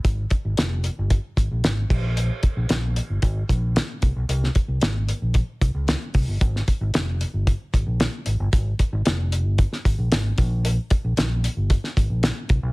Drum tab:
CC |--------------x-|----------------|----------------|----------------|
HH |x-x-x-x-x-x-x---|x-x-x-x-x-x-x-x-|x-x-x-x-x-x-x-o-|x-x-x-x-x-x-x-x-|
SD |----o-------o---|----o-------o---|-o--o-------o---|-o--o-------o---|
BD |o-o-----o-o---o-|--o-----o-o---o-|--o-----o-o---o-|o-o-----o-o-----|

CC |----------------|----------------|
HH |x-x-x-x-x-x-x-x-|x-x-x-x-x-x-x-x-|
SD |----o----o--o---|----o----o--o---|
BD |o-o-----o-o---o-|--o-----o-o---o-|